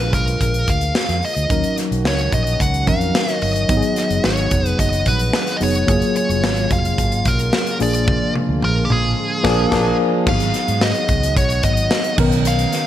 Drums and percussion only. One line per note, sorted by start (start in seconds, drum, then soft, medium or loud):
0.13 kick medium
0.13 closed hi-hat medium
0.28 closed hi-hat medium
0.41 kick medium
0.41 closed hi-hat medium
0.54 closed hi-hat soft
0.68 kick medium
0.68 closed hi-hat medium
0.81 closed hi-hat soft
0.95 snare loud
1.09 snare soft
1.09 closed hi-hat soft
1.23 open hi-hat medium
1.37 closed hi-hat medium
1.50 kick loud
1.50 closed hi-hat medium
1.64 closed hi-hat medium
1.78 snare soft
1.78 closed hi-hat medium
1.92 closed hi-hat soft
2.05 snare loud
2.18 closed hi-hat soft
2.33 kick medium
2.33 closed hi-hat medium
2.47 closed hi-hat medium
2.60 kick medium
2.60 closed hi-hat medium
2.74 closed hi-hat soft
2.87 kick medium
2.87 closed hi-hat medium
3.01 closed hi-hat soft
3.15 snare loud
3.28 snare soft
3.28 closed hi-hat soft
3.42 open hi-hat medium
3.56 closed hi-hat medium
3.69 kick loud
3.69 closed hi-hat medium
3.82 closed hi-hat medium
3.96 snare soft
3.96 closed hi-hat medium
4.11 closed hi-hat soft
4.24 snare loud
4.37 closed hi-hat soft
4.51 kick medium
4.51 closed hi-hat medium
4.66 closed hi-hat medium
4.79 kick medium
4.79 closed hi-hat medium
4.93 closed hi-hat soft
5.06 kick medium
5.06 closed hi-hat medium
5.19 closed hi-hat soft
5.33 snare loud
5.47 snare soft
5.47 closed hi-hat soft
5.61 open hi-hat medium
5.75 closed hi-hat medium
5.88 kick loud
5.88 closed hi-hat medium
6.02 closed hi-hat medium
6.16 closed hi-hat medium
6.30 closed hi-hat soft
6.44 snare loud
6.57 closed hi-hat soft
6.71 kick medium
6.71 closed hi-hat medium
6.85 closed hi-hat medium
6.98 kick medium
6.98 closed hi-hat medium
7.12 closed hi-hat soft
7.25 kick medium
7.25 closed hi-hat medium
7.39 closed hi-hat soft
7.53 snare loud
7.67 closed hi-hat medium
7.80 open hi-hat medium
7.94 closed hi-hat medium
8.08 kick loud
8.08 high tom medium
8.35 high tom medium
8.62 mid tom medium
8.90 mid tom medium
9.45 kick loud
9.45 snare loud
9.45 crash medium
9.72 kick loud
9.72 snare loud
9.72 crash medium
10.27 kick loud
10.27 crash medium
10.40 closed hi-hat medium
10.54 snare soft
10.54 closed hi-hat medium
10.68 closed hi-hat medium
10.81 snare loud
10.94 closed hi-hat soft
11.08 kick medium
11.08 closed hi-hat medium
11.23 closed hi-hat medium
11.36 kick medium
11.36 closed hi-hat medium
11.50 closed hi-hat soft
11.63 kick medium
11.63 closed hi-hat medium
11.77 closed hi-hat soft
11.91 snare loud
12.04 closed hi-hat medium
12.18 kick loud
12.18 crash medium
12.32 closed hi-hat medium
12.45 closed hi-hat medium
12.59 closed hi-hat medium
12.73 snare soft
12.73 closed hi-hat medium